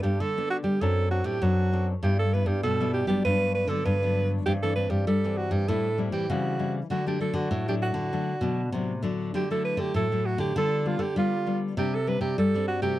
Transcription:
Already playing: nylon-string guitar G3 B3 D4 A4
0.02 nylon-string guitar G2, alto saxophone G4
0.20 nylon-string guitar D3, alto saxophone A4
0.38 nylon-string guitar B3 D4 A4
0.50 alto saxophone F#4
0.64 nylon-string guitar G3, alto saxophone G4
0.81 nylon-string guitar F#2 F#3 C4 D4 A4, alto saxophone A4
1.11 nylon-string guitar C4 D4 A4, alto saxophone F#4
1.24 nylon-string guitar A2, alto saxophone G4
1.42 nylon-string guitar F#2 F#3 C4 D4 A4, alto saxophone F#4
1.72 nylon-string guitar C4 D4 A4
2.03 nylon-string guitar G2 G3 B3 E4, alto saxophone G4
2.19 alto saxophone A4
2.33 nylon-string guitar G3 B3 E4, alto saxophone B4
2.46 nylon-string guitar G2, alto saxophone G4
2.63 nylon-string guitar G2 B2, alto saxophone A4
2.81 nylon-string guitar G3 B3 E4
2.93 alto saxophone G4
3.07 nylon-string guitar F#3 G3 B3 D4, alto saxophone G4
3.25 nylon-string guitar G2, alto saxophone B4
3.54 alto saxophone B4
3.68 nylon-string guitar D3 F#3 B3 D4, alto saxophone A4
3.85 nylon-string guitar G2 D3, alto saxophone B4
4.03 nylon-string guitar F#3 B3 D4
4.45 nylon-string guitar G2 E3 C4 D4, alto saxophone G4
4.62 nylon-string guitar E3 C4 D4, alto saxophone A4
4.75 nylon-string guitar E3 C4 D4, alto saxophone B4
4.90 nylon-string guitar G2, alto saxophone G4
5.07 nylon-string guitar G2 G3, alto saxophone A4
5.24 nylon-string guitar E3 C4 D4
5.37 alto saxophone F#4
5.51 nylon-string guitar G2, alto saxophone G4
5.68 nylon-string guitar A2 G3 C4 E4, alto saxophone A4
5.98 nylon-string guitar G3 C4 E4
6.12 nylon-string guitar E3, alto saxophone G4
6.30 nylon-string guitar C#3 E3 G3 C4 E4, alto saxophone F#4
6.59 nylon-string guitar G3 C4 E4
6.90 nylon-string guitar D3 F#3 A3 D4, alto saxophone F#4
7.07 nylon-string guitar F#3 A3 D4, alto saxophone G4
7.20 nylon-string guitar F#3 A3 D4, alto saxophone A4
7.34 nylon-string guitar D3, alto saxophone F#4
7.51 nylon-string guitar A2
7.68 nylon-string guitar F#3 A3 D4, alto saxophone G4
7.82 alto saxophone F#4
7.94 nylon-string guitar D3
8.12 nylon-string guitar D3 F#3 A3 D4
8.41 nylon-string guitar B2 F#3 A3 D4
8.72 nylon-string guitar A2 C3 F#3 A3 D4
9.02 nylon-string guitar D3 F#3 A3 D4
9.34 nylon-string guitar D3 F#3 A3 E4, alto saxophone G4
9.51 nylon-string guitar F#3 A3 E4, alto saxophone A4
9.64 alto saxophone B4
9.77 nylon-string guitar D3, alto saxophone G4
9.94 nylon-string guitar A2 F#3 A3 E4, alto saxophone A4
10.12 nylon-string guitar F#3 A3 E4
10.26 alto saxophone F#4
10.38 nylon-string guitar D3, alto saxophone G4
10.56 nylon-string guitar D3 G3 B3 F4, alto saxophone A4
10.85 nylon-string guitar G3 B3 F4, alto saxophone F4
10.99 nylon-string guitar D3, alto saxophone G4 A4
11.16 nylon-string guitar D3 G3 B3 F4, alto saxophone F4
11.47 nylon-string guitar G3 B3 F4
11.77 nylon-string guitar C3 G3 C4 D4, alto saxophone G4
11.94 alto saxophone A4
12.07 nylon-string guitar G3 C4 D4, alto saxophone B4
12.21 nylon-string guitar C3, alto saxophone G4
12.38 nylon-string guitar G2 G3, alto saxophone A4
12.55 nylon-string guitar G3 C4 D4
12.68 alto saxophone F#4
12.82 nylon-string guitar C3 A3 C4 F#4, alto saxophone G4

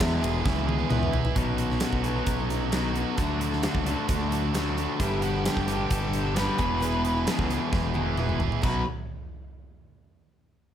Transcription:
Already playing: distorted electric guitar E2 G#3 B4, overdriven electric guitar E2 B2 E3
0.00 fingered electric bass E2, steel-string acoustic guitar E3 G#3 B3 E4 B4, distorted electric guitar B3, kick, snare, ride
0.22 fingered electric bass E1, steel-string acoustic guitar G#3 B3 E4 B4, distorted electric guitar G#4, ride
0.44 fingered electric bass C#2, distorted electric guitar E4, kick, snare
0.56 steel-string acoustic guitar B3 E4 B4
0.67 distorted electric guitar G#4, high tom
0.78 steel-string acoustic guitar B3 E4 B4
0.90 fingered electric bass C#2, steel-string acoustic guitar E3 G#3 B3 E4 B4, distorted electric guitar B3, mid tom
1.03 mid tom
1.13 fingered electric bass B1, steel-string acoustic guitar G#3 B3 E4 B4, distorted electric guitar E4, floor tom
1.25 steel-string acoustic guitar B3 E4 B4, floor tom
1.35 fingered electric bass B1, distorted electric guitar B2 F#3 B3 D#4 F#4, steel-string acoustic guitar B2 D#3 F#3 C#4 D#4 B4, kick, closed hi-hat
1.57 distorted electric guitar B3 D#4 F#4, closed hi-hat
1.70 steel-string acoustic guitar F#3 C#4 D#4 B4, snare
1.80 distorted electric guitar B2 F#3 B3 D#4 F#4, steel-string acoustic guitar B2 D#3 F#3 C#4 D#4 B4, snare, closed hi-hat
1.93 fingered electric bass B1, kick
2.03 overdriven electric guitar B2 F#3, steel-string acoustic guitar F#3 C#4 D#4, distorted electric guitar B3 D#4 F#4, closed hi-hat
2.07 steel-string acoustic guitar B4
2.16 steel-string acoustic guitar F#3 C#4 D#4 B4
2.26 fingered electric bass B1, kick, closed hi-hat
2.38 steel-string acoustic guitar F#3 C#4 D#4 B4
2.50 steel-string acoustic guitar F#3 C#4 D#4 B4, closed hi-hat
2.60 steel-string acoustic guitar F#3 C#4 D#4 B4
2.71 overdriven electric guitar B2, steel-string acoustic guitar B2 D#3 F#3 C#4 D#4 B4, distorted electric guitar F#3 B3 D#4 F#4, snare, closed hi-hat
2.93 steel-string acoustic guitar F#3 C#4 D#4 B4, distorted electric guitar B3 D#4 F#4, closed hi-hat
3.15 fingered electric bass D2, distorted electric guitar D3 F#3 A3 D4 F#4, steel-string acoustic guitar D3 F#3, kick, closed hi-hat
3.19 steel-string acoustic guitar D4 F#4 A4
3.39 distorted electric guitar A3 D4 F#4, closed hi-hat
3.52 steel-string acoustic guitar D4 F#4 A4, snare
3.62 distorted electric guitar D3 F#3 A3 D4 F#4, steel-string acoustic guitar D3 F#3 D4 F#4 A4, snare, closed hi-hat
3.75 fingered electric bass C#2, kick
3.85 steel-string acoustic guitar F#3 D4 F#4 A4, distorted electric guitar A3 D4 F#4, closed hi-hat
3.89 overdriven electric guitar D3
3.96 steel-string acoustic guitar D4 F#4 A4
4.09 fingered electric bass D2, kick, closed hi-hat
4.19 steel-string acoustic guitar D4 F#4 A4
4.31 steel-string acoustic guitar F#3 D4 F#4 A4, closed hi-hat
4.42 steel-string acoustic guitar D4 F#4 A4
4.53 steel-string acoustic guitar D3 F#3 D4 F#4 A4, overdriven electric guitar D3, distorted electric guitar F#3 A3 D4 F#4, snare, closed hi-hat
4.75 steel-string acoustic guitar F#3 D4, distorted electric guitar A3 D4 F#4, closed hi-hat
4.79 steel-string acoustic guitar F#4 A4
4.99 fingered electric bass G1, distorted electric guitar G2 D3 G3 B3 D4 G4, steel-string acoustic guitar G3 D4 G4 B4, lead electric guitar E4, kick, closed hi-hat
5.21 distorted electric guitar G3 B3 D4 G4, lead electric guitar F#4, closed hi-hat
5.34 steel-string acoustic guitar D4 G4 B4
5.44 distorted electric guitar G2 D3 G3 B3 D4 G4, steel-string acoustic guitar G3 D4 G4 B4, snare, closed hi-hat
5.57 fingered electric bass G1, kick, snare
5.67 overdriven electric guitar G2 D3, steel-string acoustic guitar G3 D4 G4 B4, distorted electric guitar G3 B3 D4 G4, closed hi-hat
5.91 fingered electric bass G1, lead electric guitar A4, kick, closed hi-hat
6.02 steel-string acoustic guitar D4 G4 B4
6.13 steel-string acoustic guitar G3 D4 G4 B4, closed hi-hat
6.25 steel-string acoustic guitar D4 G4 B4
6.34 overdriven electric guitar G2 D3, distorted electric guitar G3 B3 D4 G4, steel-string acoustic guitar G3 D4 G4 B4, snare, closed hi-hat
6.58 fingered electric bass E1, distorted electric guitar E2 B2 E3 B3 E4 G#4, steel-string acoustic guitar G#3 B3 E4 B4, kick, closed hi-hat
6.80 distorted electric guitar E2 B2 E3 B3 E4 G#4, steel-string acoustic guitar E3 G#3 B3 E4 B4, closed hi-hat
7.05 distorted electric guitar E3 B3 E4 G#4, closed hi-hat
7.16 steel-string acoustic guitar B3 E4 B4
7.26 distorted electric guitar E2 B2 E3 B3 E4 G#4, steel-string acoustic guitar E3 G#3 B3 E4 B4, snare, closed hi-hat
7.39 fingered electric bass C#2, kick, snare
7.49 distorted electric guitar E3 B3 E4 G#4, steel-string acoustic guitar G#3 B3 E4 B4, closed hi-hat
7.73 fingered electric bass E1, kick, snare
7.83 steel-string acoustic guitar B3 E4 B4
7.94 overdriven electric guitar E2 B2 E3, steel-string acoustic guitar G#3 B3 E4 B4, high tom
8.17 distorted electric guitar E3 B3 E4 G#4, steel-string acoustic guitar E3 G#3 B3 E4 B4, mid tom
8.29 mid tom
8.39 distorted electric guitar E3 B3 E4 G#4, steel-string acoustic guitar G#3 B3 E4 B4, floor tom
8.52 floor tom
8.62 fingered electric bass B1, steel-string acoustic guitar B2 D#3 F#3 C#4 D#4 B4, distorted electric guitar B2 F#3 B3 D#4 F#4, kick, crash

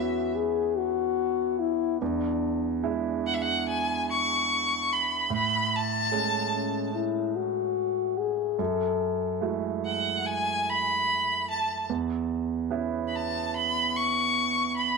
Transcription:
Already playing: grand piano E2 B3 C#4 E4, french horn F#4, violin E5
0.36 french horn G#4
0.78 french horn F#4
1.60 french horn E4
2.01 grand piano E2, french horn D4
2.83 grand piano G#3 D4 E4
3.26 violin F#5
3.34 violin E5
3.42 violin F#5
3.69 violin G#5
4.10 violin C#6
4.93 violin B5
5.30 grand piano A2
5.35 violin B5
5.76 violin A5
6.12 grand piano G#3 A3 C#4
6.53 french horn C#4
6.95 french horn E4
7.36 french horn F#4
8.18 french horn G#4
8.59 grand piano F#2, french horn A4
9.41 grand piano G#3 A3 E4 F#4
9.86 violin F#5
10.26 violin G#5
10.70 violin B5
11.50 violin A5
11.90 grand piano E2
12.71 grand piano B3 C#4 E4
13.08 violin B5
13.16 violin A5
13.56 violin B5
13.96 violin C#6
14.77 violin B5

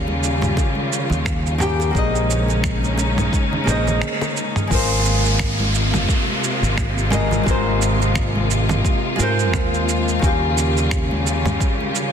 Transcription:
Already playing: fretless electric bass D#2, string section C#3 G3 F4, nylon-string guitar D#3 C#4 G4 F5
0.07 high bongo, high conga
0.24 cabasa
0.42 mid tom, high conga, cabasa
0.57 kick, high bongo, cabasa
0.75 high conga
0.93 cabasa
1.10 fretless electric bass D#2, low conga, cabasa
1.25 finger snap, kick, high bongo, cabasa
1.46 cabasa
1.58 nylon-string guitar D#3 C#4 G4 G5, mid tom, cabasa
1.80 high bongo, cabasa
1.91 string section G#3 C#4 D#4, nylon-string guitar A#3 G#4 C5, kick
1.95 fretless electric bass A#1, string section C#3, nylon-string guitar D#5, cabasa
2.15 cabasa
2.30 cabasa
2.49 high bongo, cabasa
2.64 finger snap, kick, cabasa
2.83 high conga, cabasa
2.98 high bongo, cabasa
3.18 mid tom, high conga, cabasa
3.33 kick, cabasa
3.53 low conga
3.64 fretless electric bass A#1, nylon-string guitar A#3 G#4 C5, mid tom
3.68 nylon-string guitar D#5, high bongo, cabasa
3.87 low conga, cabasa
4.01 finger snap, high tom, cabasa
4.21 high tom, high bongo, cabasa
4.37 cabasa
4.56 mid tom, cabasa
4.67 fretless electric bass G#1, string section C3, nylon-string guitar G#3 F4, kick, downlifter
4.71 string section A#3 F4, nylon-string guitar A#4 C5, cabasa
5.06 cabasa
5.25 cabasa
5.39 finger snap, kick, cabasa
5.60 high conga
5.75 cabasa
5.94 mid tom, high conga, low conga, cabasa
6.09 kick, cabasa
6.28 high conga
6.44 cabasa
6.63 fretless electric bass G#1, cabasa
6.78 finger snap, kick, cabasa
6.98 cabasa
7.10 nylon-string guitar G#3 F4 A#4 D#5, mid tom, low conga, cabasa
7.31 low conga, cabasa
7.43 fretless electric bass G#1, nylon-string guitar G#3 F4, kick
7.48 nylon-string guitar A#4 C5, cabasa
7.82 cabasa
8.00 high bongo, cabasa
8.15 finger snap, kick, cabasa
8.36 high conga
8.51 cabasa
8.69 mid tom, high conga, low conga, cabasa
8.85 kick, cabasa
9.16 fretless electric bass G#2, nylon-string guitar G#3 F4, cabasa
9.21 nylon-string guitar A#4 C5
9.39 cabasa
9.54 fretless electric bass D#2, finger snap, kick, low conga, cabasa
9.74 cabasa
9.89 cabasa
10.08 cabasa
10.19 fretless electric bass D#2, string section C#3 G3, nylon-string guitar D#3 C#4, kick
10.23 nylon-string guitar G4 F5, cabasa
10.58 cabasa
10.77 cabasa
10.91 finger snap, kick, cabasa
11.11 high conga
11.27 cabasa
11.45 mid tom, high conga, low conga, cabasa
11.61 kick, cabasa
11.81 high conga
11.95 cabasa

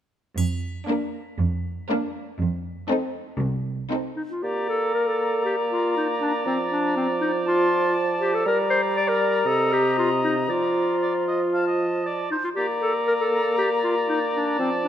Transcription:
0.37 cello section F2, triangle
0.88 viola section A#3, violin section D4 A#4
1.39 cello section F2
1.90 viola section A#3, violin section D4 A#4
2.40 cello section F2
2.90 viola section C4, violin section D#4 A4
3.40 cello section C2
3.91 viola section C4, violin section D#4 A4
4.17 clarinet D#4
4.31 clarinet F4
4.43 bassoon A#3, clarinet G4, oboe D5, flute A#5
4.69 clarinet A4
4.94 clarinet A#4
5.08 clarinet A4
5.45 clarinet G4
5.71 clarinet F4
5.97 clarinet D#4
6.21 clarinet D4
6.46 bassoon F3, clarinet C4
6.71 clarinet D4
6.97 clarinet C4
7.21 clarinet D#4
7.46 clarinet F4, flute A5
8.20 clarinet G4
8.34 clarinet A4
8.45 bassoon G3, clarinet A#4, oboe D5, flute A#5
8.70 clarinet C5
8.96 clarinet D5
9.09 clarinet A#4
9.45 bassoon C3, clarinet A4, oboe D#5
9.73 clarinet G4
9.98 clarinet F4
10.24 clarinet D#4
10.49 bassoon F3, clarinet F4, oboe D5
11.02 oboe D5
11.28 oboe D#5
11.53 oboe F5, flute A5
11.66 oboe D#5
12.06 oboe D5
12.31 clarinet D#4, oboe C5
12.44 clarinet F4
12.55 bassoon A#3, clarinet G4, oboe D5, flute A#5
12.82 clarinet A4
13.08 clarinet A#4
13.21 clarinet A4
13.58 clarinet G4
13.84 clarinet F4
14.09 clarinet D#4
14.34 clarinet D4
14.59 bassoon F3, clarinet C4, flute A5
14.83 clarinet D4

